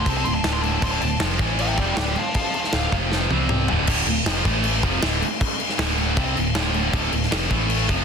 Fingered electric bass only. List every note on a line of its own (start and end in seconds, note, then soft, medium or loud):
0.06 0.24 C2 loud
0.25 0.43 D1 medium
0.45 0.80 D1 medium
0.82 1.00 D1 loud
1.02 1.20 D1 medium
1.21 1.39 F1 loud
1.39 1.75 A1 loud
1.77 1.95 F1 loud
1.97 2.15 D1 medium
2.73 2.91 D1 medium
2.92 3.28 F1 loud
3.30 3.66 C2 medium
3.69 3.87 D1 loud
3.88 4.06 D1 loud
4.06 4.25 D1 medium
4.26 4.44 F1 medium
4.45 4.81 A1 loud
4.83 5.01 F1 loud
5.03 5.21 D1 medium
5.79 6.15 D1 medium
6.17 6.35 C2 loud
6.36 6.54 D1 medium
6.56 6.91 D1 loud
6.93 7.12 D1 loud
7.13 7.31 D1 medium
7.32 7.50 F1 loud
7.51 7.87 A1 loud
7.89 8.04 F1 loud